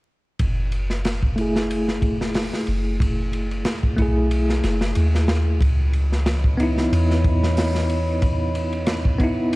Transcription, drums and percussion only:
0.39 kick, ride
0.72 ride
0.90 snare
1.05 snare, ride
1.23 kick
1.38 ride
1.56 snare
1.70 ride
1.88 snare
2.02 kick, ride
2.21 snare
2.34 snare, open hi-hat
2.53 snare
2.67 ride
3.00 kick, ride
3.33 ride
3.51 ride
3.65 snare, ride
3.83 kick
3.98 kick, ride
4.31 ride
4.49 snare
4.63 snare, ride
4.81 snare
4.95 ride
5.15 snare
5.28 snare, ride
5.61 kick, ride
5.93 ride
6.12 snare
6.26 snare, ride
6.44 kick
6.60 ride
6.78 snare
6.93 ride
7.11 snare
7.24 kick, ride
7.43 snare
7.57 snare, open hi-hat
7.75 snare
7.89 ride
8.22 kick, ride
8.55 ride
8.73 ride
8.87 snare, ride
9.05 kick
9.20 kick, ride
9.53 ride

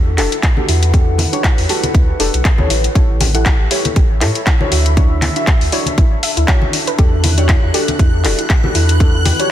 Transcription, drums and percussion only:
0.18 clap, open hi-hat
0.32 closed hi-hat
0.43 kick, clap, closed hi-hat
0.57 high conga
0.69 open hi-hat
0.83 closed hi-hat
0.94 kick, closed hi-hat
1.18 open hi-hat, high conga
1.33 closed hi-hat
1.44 kick, clap, closed hi-hat
1.58 open hi-hat
1.69 open hi-hat
1.83 closed hi-hat, high conga
1.95 kick, closed hi-hat
2.20 open hi-hat
2.34 closed hi-hat
2.45 kick, clap, closed hi-hat
2.58 high conga
2.70 open hi-hat
2.84 closed hi-hat
2.95 kick, closed hi-hat
3.21 open hi-hat, high conga
3.35 closed hi-hat
3.46 kick, clap, closed hi-hat
3.71 open hi-hat
3.85 closed hi-hat, high conga
3.96 kick, closed hi-hat
4.21 clap, open hi-hat
4.35 closed hi-hat
4.47 kick, clap, closed hi-hat
4.61 high conga
4.72 open hi-hat
4.86 closed hi-hat
4.97 kick, closed hi-hat
5.22 clap, open hi-hat, high conga
5.36 closed hi-hat
5.47 kick, clap, closed hi-hat
5.61 open hi-hat
5.72 open hi-hat
5.86 closed hi-hat, high conga
5.98 kick, closed hi-hat
6.23 open hi-hat
6.37 closed hi-hat
6.48 kick, clap, closed hi-hat
6.62 high conga
6.73 open hi-hat
6.87 closed hi-hat
6.99 kick, closed hi-hat
7.24 open hi-hat, high conga
7.38 closed hi-hat
7.49 kick, clap, closed hi-hat
7.74 open hi-hat
7.88 closed hi-hat, high conga
7.99 kick, closed hi-hat
8.25 clap, open hi-hat
8.39 closed hi-hat
8.50 kick, clap, closed hi-hat
8.64 high conga
8.75 open hi-hat
8.89 closed hi-hat
9.00 kick, closed hi-hat
9.26 open hi-hat, high conga
9.40 closed hi-hat

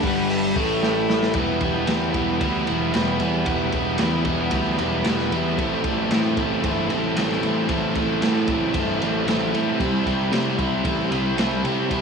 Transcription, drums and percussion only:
0.03 kick, open hi-hat
0.30 open hi-hat
0.56 kick, open hi-hat
0.83 snare
1.10 snare
1.23 snare
1.34 kick, ride
1.61 kick, ride
1.87 snare, ride
2.14 kick, ride
2.41 kick, ride
2.67 ride
2.94 snare, ride
3.20 ride
3.46 kick, ride
3.72 kick, ride
3.98 snare, ride
4.25 kick, ride
4.51 kick, ride
4.79 ride
5.05 snare, ride
5.20 snare
5.32 ride
5.58 kick, ride
5.84 kick, ride
6.11 snare, ride
6.37 kick, ride
6.64 kick, ride
6.90 ride
7.17 snare, ride
7.31 snare
7.43 ride
7.69 kick, ride
7.95 kick, ride
8.22 snare, ride
8.48 kick, ride
8.74 kick, ride
9.02 ride
9.28 snare, ride
9.54 ride
9.80 kick, ride
10.06 kick, ride
10.33 snare, ride
10.59 kick, ride
10.85 kick, ride
11.12 ride
11.38 snare, ride
11.65 ride
11.91 kick, ride

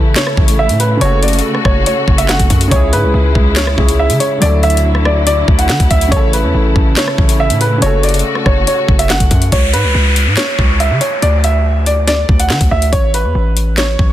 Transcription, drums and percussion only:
0.16 snare, clap, closed hi-hat
0.27 cross-stick
0.37 kick
0.48 closed hi-hat
0.69 closed hi-hat
0.80 closed hi-hat
1.01 closed hi-hat
1.23 closed hi-hat
1.28 closed hi-hat
1.33 closed hi-hat
1.39 closed hi-hat
1.55 cross-stick
1.65 kick, cross-stick
1.86 closed hi-hat
2.08 kick
2.18 closed hi-hat
2.29 snare, clap, closed hi-hat
2.40 kick, closed hi-hat
2.50 kick, closed hi-hat
2.61 closed hi-hat
2.71 kick, closed hi-hat
2.93 closed hi-hat
3.35 kick
3.56 snare, clap, closed hi-hat
3.67 cross-stick
3.78 kick
3.89 closed hi-hat
4.10 closed hi-hat
4.20 closed hi-hat
4.42 closed hi-hat
4.63 closed hi-hat
4.70 closed hi-hat
4.77 closed hi-hat
4.95 cross-stick
5.05 cross-stick
5.27 closed hi-hat
5.48 kick
5.59 closed hi-hat
5.69 snare, clap, closed hi-hat
5.80 kick, closed hi-hat
5.91 kick, closed hi-hat
6.01 closed hi-hat
6.12 kick, closed hi-hat
6.33 closed hi-hat
6.76 kick
6.97 snare, clap, closed hi-hat
7.08 cross-stick
7.18 kick
7.29 closed hi-hat
7.50 closed hi-hat
7.61 closed hi-hat
7.82 closed hi-hat
8.03 closed hi-hat
8.09 closed hi-hat
8.14 closed hi-hat
8.19 closed hi-hat
8.35 cross-stick
8.46 kick, cross-stick
8.67 closed hi-hat
8.89 kick
8.99 closed hi-hat
9.10 snare, clap, closed hi-hat
9.20 kick, closed hi-hat
9.31 kick, closed hi-hat
9.42 closed hi-hat
9.52 kick, closed hi-hat
9.74 closed hi-hat
10.16 closed hi-hat
10.37 snare, clap, closed hi-hat
10.59 kick
10.80 closed hi-hat
11.01 closed hi-hat
11.22 closed hi-hat
11.44 closed hi-hat
11.86 closed hi-hat
12.07 snare, closed hi-hat
12.29 kick
12.40 closed hi-hat
12.50 snare, clap
12.61 kick, closed hi-hat
12.82 closed hi-hat
12.93 kick, closed hi-hat
13.14 closed hi-hat
13.57 closed hi-hat
13.78 snare, clap, closed hi-hat
13.99 kick

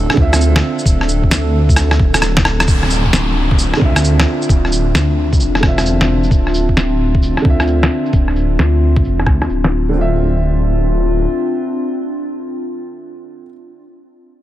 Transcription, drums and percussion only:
0.10 cross-stick
0.17 kick
0.33 cross-stick, shaker
0.41 shaker
0.56 cross-stick, snare
0.79 shaker
0.86 kick, shaker
1.01 cross-stick
1.09 shaker
1.24 kick
1.31 snare, shaker
1.69 kick, shaker
1.76 cross-stick, shaker
1.91 cross-stick
2.00 kick
2.14 cross-stick, shaker
2.22 cross-stick, shaker
2.37 kick, snare
2.45 cross-stick
2.60 cross-stick, shaker
2.68 kick, shaker
2.83 cross-stick
2.90 shaker
3.06 kick
3.13 snare, shaker
3.51 kick
3.59 shaker
3.74 cross-stick
3.81 kick
3.96 cross-stick, shaker
4.04 shaker
4.20 cross-stick, snare
4.42 shaker
4.49 kick, shaker
4.65 cross-stick
4.72 shaker
4.95 snare, shaker
5.33 kick, shaker
5.40 shaker
5.55 cross-stick
5.63 kick, cross-stick
5.78 cross-stick, shaker
5.86 shaker
6.01 snare
6.23 shaker
6.31 kick, shaker
6.47 cross-stick
6.54 shaker
6.69 kick
6.77 snare, shaker
7.15 kick
7.23 shaker
7.37 cross-stick
7.45 kick
7.60 cross-stick, shaker
7.67 shaker
7.83 cross-stick, snare
8.06 shaker
8.13 kick, shaker
8.28 cross-stick
8.36 shaker
8.59 snare, shaker
8.96 kick, shaker
9.04 shaker
9.20 cross-stick
9.26 kick, cross-stick
9.42 cross-stick, shaker
9.49 shaker
9.64 snare
9.87 shaker

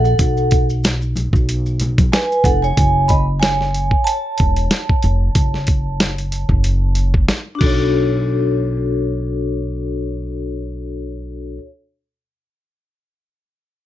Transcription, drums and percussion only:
0.05 maracas
0.19 kick, closed hi-hat, maracas
0.37 maracas
0.51 kick, closed hi-hat, maracas
0.70 maracas
0.84 snare, closed hi-hat, maracas
1.02 maracas
1.16 closed hi-hat, high conga, low conga, maracas
1.33 kick, maracas
1.49 closed hi-hat, maracas
1.66 maracas
1.80 closed hi-hat, low conga, maracas
1.98 kick, closed hi-hat, high conga, maracas
2.13 snare, closed hi-hat, maracas
2.32 maracas
2.44 kick, closed hi-hat, low conga, maracas
2.64 maracas
2.77 kick, closed hi-hat
3.09 kick, closed hi-hat
3.43 snare, closed hi-hat
3.61 snare
3.74 closed hi-hat
3.91 kick
4.07 closed hi-hat
4.38 kick, closed hi-hat
4.56 closed hi-hat
4.71 snare, closed hi-hat
4.89 kick
5.03 closed hi-hat
5.35 kick, closed hi-hat
5.54 snare
5.67 kick, closed hi-hat
6.00 snare, closed hi-hat
6.18 closed hi-hat
6.32 closed hi-hat
6.49 kick
6.64 closed hi-hat
6.95 closed hi-hat
7.14 kick
7.28 snare, closed hi-hat
7.61 kick, crash

